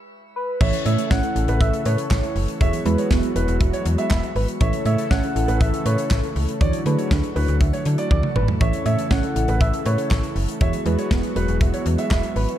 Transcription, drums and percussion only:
0.61 kick loud
0.61 crash loud
0.73 closed hi-hat medium
0.86 closed hi-hat medium
0.98 closed hi-hat medium
1.11 kick loud
1.11 snare loud
1.23 closed hi-hat medium
1.36 closed hi-hat medium
1.48 closed hi-hat soft
1.61 kick loud
1.61 closed hi-hat medium
1.73 closed hi-hat medium
1.85 closed hi-hat medium
1.98 closed hi-hat medium
2.11 kick loud
2.11 snare loud
2.11 clap loud
2.23 closed hi-hat soft
2.36 open hi-hat medium
2.48 closed hi-hat medium
2.61 kick loud
2.61 closed hi-hat medium
2.73 closed hi-hat medium
2.86 closed hi-hat medium
2.98 closed hi-hat medium
3.11 kick loud
3.11 snare loud
3.23 closed hi-hat medium
3.36 closed hi-hat medium
3.48 closed hi-hat soft
3.61 kick loud
3.61 closed hi-hat medium
3.73 closed hi-hat medium
3.86 closed hi-hat medium
3.98 closed hi-hat medium
4.11 kick loud
4.11 snare loud
4.11 clap loud
4.23 closed hi-hat soft
4.36 open hi-hat medium
4.48 closed hi-hat medium
4.61 kick loud
4.61 closed hi-hat medium
4.73 closed hi-hat medium
4.85 closed hi-hat medium
4.98 closed hi-hat medium
5.11 kick loud
5.11 snare loud
5.23 closed hi-hat medium
5.36 closed hi-hat medium
5.48 closed hi-hat soft
5.61 kick loud
5.61 closed hi-hat medium
5.74 closed hi-hat medium
5.86 closed hi-hat medium
5.98 closed hi-hat medium
6.11 kick loud
6.11 snare loud
6.11 clap loud
6.23 closed hi-hat soft
6.36 open hi-hat medium
6.49 closed hi-hat medium
6.61 kick loud
6.61 closed hi-hat medium
6.73 closed hi-hat medium
6.86 closed hi-hat medium
6.99 closed hi-hat medium
7.11 kick loud
7.11 snare loud
7.23 closed hi-hat medium
7.36 open hi-hat medium
7.48 closed hi-hat soft
7.61 kick loud
7.61 closed hi-hat medium
7.73 closed hi-hat medium
7.85 closed hi-hat medium
7.98 closed hi-hat medium
8.11 kick loud
8.11 high tom medium
8.23 mid tom medium
8.36 mid tom medium
8.48 floor tom loud
8.61 kick loud
8.61 closed hi-hat medium
8.73 closed hi-hat medium
8.86 closed hi-hat medium
8.99 closed hi-hat medium
9.11 kick loud
9.11 snare loud
9.23 closed hi-hat medium
9.36 closed hi-hat medium
9.48 closed hi-hat soft
9.61 kick loud
9.61 closed hi-hat medium
9.73 closed hi-hat medium
9.86 closed hi-hat medium
9.98 closed hi-hat medium
10.11 kick loud
10.11 snare loud
10.11 clap loud
10.23 closed hi-hat soft
10.36 open hi-hat medium
10.49 closed hi-hat medium
10.61 kick loud
10.61 closed hi-hat medium
10.73 closed hi-hat medium
10.86 closed hi-hat medium
10.99 closed hi-hat medium
11.11 kick loud
11.11 snare loud
11.23 closed hi-hat medium
11.36 closed hi-hat medium
11.48 closed hi-hat soft
11.61 kick loud
11.61 closed hi-hat medium
11.74 closed hi-hat medium
11.86 closed hi-hat medium
11.98 closed hi-hat medium
12.11 kick loud
12.11 snare loud
12.11 clap loud
12.23 closed hi-hat soft
12.36 open hi-hat medium
12.49 closed hi-hat medium

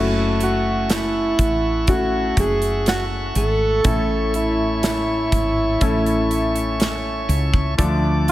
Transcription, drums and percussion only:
0.40 closed hi-hat medium
0.90 snare medium
0.90 closed hi-hat medium
1.39 kick medium
1.39 closed hi-hat medium
1.87 kick medium
1.87 closed hi-hat medium
2.37 kick medium
2.37 closed hi-hat medium
2.62 closed hi-hat medium
2.86 snare medium
2.86 closed hi-hat medium
3.35 closed hi-hat medium
3.84 kick loud
3.84 closed hi-hat medium
4.34 closed hi-hat medium
4.83 snare medium
4.83 closed hi-hat medium
5.32 kick medium
5.32 closed hi-hat medium
5.81 kick medium
5.81 closed hi-hat medium
6.06 closed hi-hat soft
6.31 closed hi-hat medium
6.56 closed hi-hat medium
6.80 snare medium
6.80 closed hi-hat medium
7.29 closed hi-hat medium
7.54 kick medium
7.79 kick loud
7.79 closed hi-hat medium
8.28 closed hi-hat medium

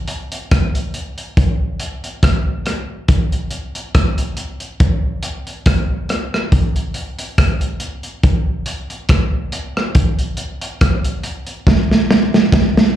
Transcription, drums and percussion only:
0.08 closed hi-hat medium
0.32 closed hi-hat medium
0.51 kick loud
0.51 cross-stick loud
0.51 closed hi-hat medium
0.75 closed hi-hat medium
0.94 closed hi-hat medium
1.18 closed hi-hat medium
1.37 kick loud
1.37 closed hi-hat medium
1.80 closed hi-hat medium
2.04 closed hi-hat medium
2.23 kick loud
2.23 cross-stick loud
2.23 closed hi-hat loud
2.66 cross-stick medium
2.66 closed hi-hat medium
3.08 kick loud
3.08 closed hi-hat medium
3.32 closed hi-hat soft
3.51 closed hi-hat medium
3.75 closed hi-hat medium
3.95 kick loud
3.95 cross-stick loud
3.95 closed hi-hat medium
4.18 closed hi-hat medium
4.37 closed hi-hat medium
4.60 closed hi-hat medium
4.80 kick loud
4.80 closed hi-hat medium
5.23 closed hi-hat medium
5.47 closed hi-hat soft
5.66 kick loud
5.66 cross-stick loud
5.66 closed hi-hat medium
6.09 cross-stick medium
6.09 closed hi-hat medium
6.34 cross-stick medium
6.52 kick loud
6.52 closed hi-hat medium
6.76 closed hi-hat medium
6.94 closed hi-hat medium
7.19 closed hi-hat medium
7.38 kick loud
7.38 cross-stick loud
7.38 closed hi-hat medium
7.61 closed hi-hat medium
7.80 closed hi-hat medium
8.03 closed hi-hat soft
8.23 kick loud
8.23 closed hi-hat medium
8.66 closed hi-hat medium
8.90 closed hi-hat medium
9.09 kick loud
9.09 cross-stick loud
9.09 closed hi-hat medium
9.52 closed hi-hat medium
9.77 cross-stick medium
9.95 kick loud
9.95 closed hi-hat loud
10.19 closed hi-hat medium
10.37 closed hi-hat medium
10.62 closed hi-hat medium
10.81 kick loud
10.81 cross-stick loud
10.81 closed hi-hat loud
11.05 closed hi-hat medium
11.23 closed hi-hat medium
11.47 closed hi-hat medium
11.67 kick loud
11.67 snare medium
11.91 snare medium
12.11 snare medium
12.34 snare medium
12.52 kick loud
12.52 snare medium
12.77 snare medium

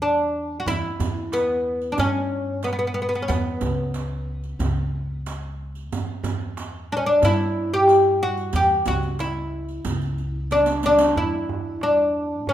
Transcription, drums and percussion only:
0.67 riq medium
0.67 darbuka dum medium
1.00 riq medium
1.00 darbuka dum medium
1.16 darbuka ka soft
1.32 riq medium
1.32 darbuka tek medium
1.81 riq soft
1.81 darbuka ka soft
1.98 riq medium
1.98 darbuka dum medium
2.15 darbuka ka soft
2.32 darbuka ka soft
2.63 riq soft
2.63 darbuka tek medium
2.97 darbuka ka soft
3.13 riq soft
3.13 darbuka ka soft
3.29 riq medium
3.29 darbuka dum medium
3.61 riq medium
3.61 darbuka dum loud
3.79 darbuka ka soft
3.94 riq medium
3.94 darbuka tek medium
4.44 riq soft
4.44 darbuka ka soft
4.60 riq medium
4.60 darbuka dum medium
4.77 darbuka ka soft
4.95 darbuka ka soft
5.26 riq medium
5.26 darbuka tek medium
5.75 riq soft
5.75 darbuka ka soft
5.92 riq medium
5.92 darbuka dum medium
6.24 riq medium
6.24 darbuka dum loud
6.40 darbuka ka soft
6.57 riq medium
6.57 darbuka tek medium
7.06 riq soft
7.06 darbuka ka soft
7.22 riq medium
7.22 darbuka dum medium
7.39 darbuka ka soft
7.88 riq soft
7.88 darbuka tek medium
8.21 darbuka ka soft
8.37 riq soft
8.53 riq medium
8.53 darbuka dum medium
8.86 riq medium
8.86 darbuka dum medium
9.03 riq soft
9.03 darbuka ka soft
9.19 riq soft
9.19 darbuka tek medium
9.68 riq soft
9.68 darbuka ka soft
9.85 riq medium
9.85 darbuka dum medium
10.01 riq soft
10.01 darbuka ka soft
10.18 riq soft
10.18 darbuka ka soft
10.51 riq medium
10.51 darbuka tek medium
10.60 darbuka ka medium
10.66 riq medium
10.66 darbuka tek medium
10.76 darbuka ka medium
10.83 riq medium
10.83 darbuka tek medium
10.93 darbuka ka medium
10.99 riq medium
10.99 darbuka tek medium
11.09 darbuka ka medium
11.16 darbuka dum medium
11.49 darbuka dum medium
11.65 darbuka ka soft
11.81 darbuka tek medium
12.31 darbuka ka soft
12.47 darbuka dum medium

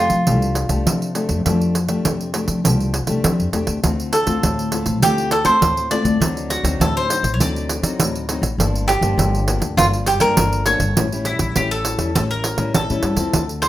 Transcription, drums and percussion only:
0.10 pandeiro medium
0.27 pandeiro medium
0.42 pandeiro soft
0.55 pandeiro medium
0.69 pandeiro medium
0.87 pandeiro medium
1.02 pandeiro soft
1.15 pandeiro medium
1.29 pandeiro soft
1.46 pandeiro medium
1.61 pandeiro soft
1.75 pandeiro medium
1.88 pandeiro medium
2.05 pandeiro medium
2.21 pandeiro soft
2.34 pandeiro medium
2.48 pandeiro medium
2.65 pandeiro medium
2.80 pandeiro soft
2.94 pandeiro medium
3.07 pandeiro medium
3.24 pandeiro medium
3.40 pandeiro soft
3.53 pandeiro medium
3.67 pandeiro medium
3.84 pandeiro medium
4.00 pandeiro soft
4.13 pandeiro medium
4.27 pandeiro medium
4.43 pandeiro medium
4.59 pandeiro soft
4.72 pandeiro medium
4.86 pandeiro medium
5.02 pandeiro medium
5.18 pandeiro soft
5.31 pandeiro medium
5.45 pandeiro medium
5.62 pandeiro medium
5.77 pandeiro soft
5.91 pandeiro medium
6.05 pandeiro medium
6.22 pandeiro medium
6.37 pandeiro soft
6.50 pandeiro medium
6.65 pandeiro medium
6.81 pandeiro medium
6.97 pandeiro soft
7.10 pandeiro medium
7.24 pandeiro medium
7.40 pandeiro medium
7.56 pandeiro soft
7.69 pandeiro medium
7.83 pandeiro medium
8.00 pandeiro medium
8.15 pandeiro soft
8.29 pandeiro medium
8.43 pandeiro medium
8.60 pandeiro medium
8.75 pandeiro soft
8.89 pandeiro medium
9.02 pandeiro medium
9.19 pandeiro medium
9.35 pandeiro soft
9.48 pandeiro medium
9.62 pandeiro medium
9.78 pandeiro medium
9.93 pandeiro soft
10.06 pandeiro medium
10.20 pandeiro medium
10.37 pandeiro medium
10.53 pandeiro soft
10.66 pandeiro medium
10.80 pandeiro medium
10.97 pandeiro medium
11.12 pandeiro soft
11.25 pandeiro medium
11.39 pandeiro medium
11.56 pandeiro medium
11.71 pandeiro soft
11.85 pandeiro medium
11.99 pandeiro medium
12.16 pandeiro medium
12.31 pandeiro soft
12.44 pandeiro medium
12.58 pandeiro medium
12.74 pandeiro medium
12.90 pandeiro soft
13.03 pandeiro medium
13.17 pandeiro medium
13.33 pandeiro medium
13.49 pandeiro soft
13.62 pandeiro medium

